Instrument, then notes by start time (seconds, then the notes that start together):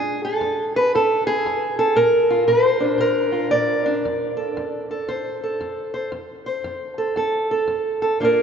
steel-string acoustic guitar
Already playing: F2 G#4
0.25 A4
0.41 F2
0.76 B4
0.95 F2 A4
1.27 G#4
1.46 F2
1.79 A4
1.96 A#2 A#4
2.30 F4
2.47 A#2 B4
2.65 C5
2.80 D4
2.98 A#2 A#4
3.32 F4
3.51 A#2 D5
3.86 D4
4.05 F2
4.37 A4
4.57 F2
4.91 A4
5.08 F2 C5
5.44 A4
5.61 F2
5.94 C5
6.12 F2
6.46 C5
6.64 F2
6.98 A4
7.16 F2 A4
7.51 A4
7.67 F2
8.02 A4
8.20 A#2 A#3 D4 F4
8.25 A#4